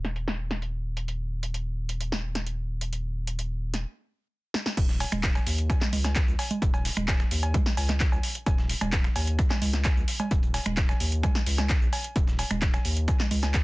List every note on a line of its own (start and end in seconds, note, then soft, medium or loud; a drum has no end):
0.00 3.85 D#1 medium
0.05 snare soft
0.05 closed hi-hat medium
0.16 closed hi-hat medium
0.28 snare medium
0.51 snare medium
0.51 closed hi-hat medium
0.62 closed hi-hat soft
0.97 closed hi-hat medium
1.08 closed hi-hat soft
1.43 closed hi-hat medium
1.54 closed hi-hat medium
1.89 closed hi-hat medium
2.01 closed hi-hat soft
2.12 snare medium
2.35 snare medium
2.35 closed hi-hat medium
2.47 closed hi-hat soft
2.81 closed hi-hat medium
2.93 closed hi-hat soft
3.27 closed hi-hat medium
3.39 closed hi-hat soft
3.74 snare soft
3.74 closed hi-hat medium
4.54 snare medium
4.66 snare medium
4.77 5.05 D#1 loud
4.77 kick loud
4.77 closed hi-hat medium
4.77 crash loud
4.77 shaker soft
4.89 snare medium
4.89 shaker soft
5.00 closed hi-hat medium
5.00 open hi-hat loud
5.00 cowbell medium
5.00 shaker medium
5.12 5.40 D#1 loud
5.12 finger snap medium
5.12 closed hi-hat medium
5.12 low conga medium
5.12 shaker soft
5.23 kick loud
5.23 snare loud
5.23 clap loud
5.23 closed hi-hat medium
5.23 shaker soft
5.35 finger snap medium
5.35 snare medium
5.35 cowbell medium
5.35 shaker soft
5.46 5.74 D#2 medium
5.46 closed hi-hat medium
5.46 open hi-hat loud
5.46 shaker medium
5.58 closed hi-hat medium
5.58 shaker soft
5.70 finger snap medium
5.70 kick loud
5.70 closed hi-hat medium
5.70 cowbell medium
5.70 shaker soft
5.81 snare soft
5.81 snare medium
5.81 clap soft
5.81 low conga medium
5.81 shaker soft
5.93 6.21 C#2 medium
5.93 closed hi-hat medium
5.93 open hi-hat loud
5.93 low conga loud
5.93 shaker medium
6.04 snare medium
6.04 closed hi-hat medium
6.04 cowbell medium
6.04 shaker soft
6.16 kick loud
6.16 snare loud
6.16 clap loud
6.16 closed hi-hat medium
6.16 shaker soft
6.28 6.35 C#2 medium
6.28 shaker soft
6.39 closed hi-hat medium
6.39 open hi-hat loud
6.39 cowbell medium
6.39 shaker medium
6.51 closed hi-hat medium
6.51 low conga medium
6.51 shaker soft
6.62 6.90 D#1 loud
6.62 kick loud
6.62 closed hi-hat medium
6.62 shaker soft
6.74 closed hi-hat soft
6.74 cowbell medium
6.74 shaker soft
6.85 snare medium
6.85 closed hi-hat medium
6.85 open hi-hat loud
6.85 shaker medium
6.97 7.25 D#1 loud
6.97 finger snap medium
6.97 closed hi-hat medium
6.97 low conga loud
6.97 shaker soft
7.08 kick loud
7.08 snare loud
7.08 clap loud
7.08 closed hi-hat medium
7.08 cowbell medium
7.08 shaker soft
7.20 finger snap medium
7.20 snare soft
7.20 shaker soft
7.31 7.59 D#2 medium
7.31 closed hi-hat medium
7.31 open hi-hat loud
7.31 shaker medium
7.43 closed hi-hat medium
7.43 cowbell medium
7.43 shaker soft
7.54 finger snap medium
7.54 kick loud
7.54 closed hi-hat medium
7.54 low conga loud
7.54 shaker soft
7.66 snare medium
7.66 shaker soft
7.77 8.05 C#2 medium
7.77 closed hi-hat medium
7.77 open hi-hat loud
7.77 cowbell medium
7.77 shaker medium
7.89 snare soft
7.89 snare medium
7.89 clap soft
7.89 closed hi-hat medium
7.89 low conga medium
7.89 shaker soft
8.00 kick loud
8.00 snare loud
8.00 clap loud
8.00 closed hi-hat medium
8.00 shaker soft
8.12 8.19 C#2 medium
8.12 cowbell medium
8.12 shaker soft
8.23 closed hi-hat medium
8.23 open hi-hat loud
8.23 shaker medium
8.35 closed hi-hat medium
8.35 shaker soft
8.46 8.74 D#1 loud
8.46 kick loud
8.46 closed hi-hat medium
8.46 cowbell medium
8.46 shaker soft
8.58 snare medium
8.58 shaker soft
8.70 closed hi-hat medium
8.70 open hi-hat loud
8.70 shaker medium
8.81 9.09 D#1 loud
8.81 finger snap medium
8.81 closed hi-hat medium
8.81 cowbell medium
8.81 low conga medium
8.81 shaker soft
8.93 kick loud
8.93 snare loud
8.93 clap loud
8.93 closed hi-hat medium
8.93 shaker soft
9.04 finger snap medium
9.04 snare medium
9.04 shaker soft
9.16 9.44 D#2 medium
9.16 closed hi-hat medium
9.16 open hi-hat loud
9.16 cowbell medium
9.16 shaker medium
9.27 closed hi-hat medium
9.27 shaker soft
9.39 finger snap medium
9.39 kick loud
9.39 closed hi-hat medium
9.39 shaker soft
9.50 snare medium
9.50 snare soft
9.50 clap soft
9.50 cowbell medium
9.50 low conga medium
9.50 shaker soft
9.62 9.90 C#2 medium
9.62 closed hi-hat medium
9.62 open hi-hat loud
9.62 low conga loud
9.62 shaker medium
9.73 snare medium
9.73 closed hi-hat medium
9.73 shaker soft
9.85 kick loud
9.85 snare loud
9.85 clap loud
9.85 closed hi-hat medium
9.85 cowbell medium
9.85 shaker soft
9.97 10.04 C#2 medium
9.97 shaker soft
10.08 closed hi-hat medium
10.08 open hi-hat loud
10.08 shaker medium
10.20 closed hi-hat medium
10.20 cowbell medium
10.20 low conga medium
10.20 shaker soft
10.31 10.59 D#1 loud
10.31 kick loud
10.31 closed hi-hat soft
10.31 closed hi-hat medium
10.31 shaker soft
10.43 closed hi-hat soft
10.43 shaker soft
10.54 snare medium
10.54 closed hi-hat medium
10.54 open hi-hat loud
10.54 cowbell medium
10.54 shaker medium
10.66 10.94 D#1 loud
10.66 finger snap medium
10.66 closed hi-hat medium
10.66 low conga medium
10.66 shaker soft
10.77 kick loud
10.77 snare loud
10.77 clap loud
10.77 closed hi-hat medium
10.77 closed hi-hat soft
10.77 shaker soft
10.89 finger snap medium
10.89 snare soft
10.89 cowbell medium
10.89 shaker soft
11.00 11.28 D#2 medium
11.00 closed hi-hat medium
11.00 open hi-hat loud
11.00 shaker medium
11.12 closed hi-hat medium
11.12 shaker soft
11.23 finger snap medium
11.23 kick loud
11.23 closed hi-hat medium
11.23 cowbell medium
11.23 low conga medium
11.23 shaker soft
11.35 snare medium
11.35 shaker soft
11.46 11.74 C#2 medium
11.46 closed hi-hat medium
11.46 open hi-hat loud
11.46 shaker medium
11.58 snare soft
11.58 snare medium
11.58 clap soft
11.58 closed hi-hat medium
11.58 cowbell medium
11.58 low conga medium
11.58 shaker soft
11.69 kick loud
11.69 snare loud
11.69 clap loud
11.69 closed hi-hat medium
11.69 shaker soft
11.81 11.88 A#1 medium
11.81 shaker soft
11.93 closed hi-hat medium
11.93 open hi-hat loud
11.93 cowbell medium
11.93 shaker medium
12.04 closed hi-hat medium
12.04 shaker soft
12.16 12.44 D#1 loud
12.16 kick loud
12.16 closed hi-hat medium
12.16 shaker soft
12.27 snare medium
12.27 shaker soft
12.39 closed hi-hat medium
12.39 open hi-hat loud
12.39 cowbell medium
12.39 shaker medium
12.50 12.78 D#1 loud
12.50 finger snap medium
12.50 closed hi-hat medium
12.50 low conga medium
12.50 shaker soft
12.62 kick loud
12.62 snare loud
12.62 clap loud
12.62 closed hi-hat medium
12.62 shaker soft
12.74 finger snap medium
12.74 snare medium
12.74 cowbell medium
12.74 shaker soft
12.85 13.13 D#2 medium
12.85 closed hi-hat medium
12.85 open hi-hat loud
12.85 shaker medium
12.97 closed hi-hat medium
12.97 shaker soft
13.08 finger snap medium
13.08 kick loud
13.08 closed hi-hat medium
13.08 cowbell medium
13.08 shaker soft
13.20 snare soft
13.20 snare medium
13.20 clap soft
13.20 low conga medium
13.20 shaker soft
13.31 13.59 C#2 medium
13.31 closed hi-hat medium
13.31 open hi-hat loud
13.31 low conga medium
13.31 shaker medium
13.43 snare medium
13.43 closed hi-hat medium
13.43 cowbell medium
13.43 shaker soft
13.54 kick loud
13.54 snare loud
13.54 clap loud
13.54 closed hi-hat medium
13.54 shaker soft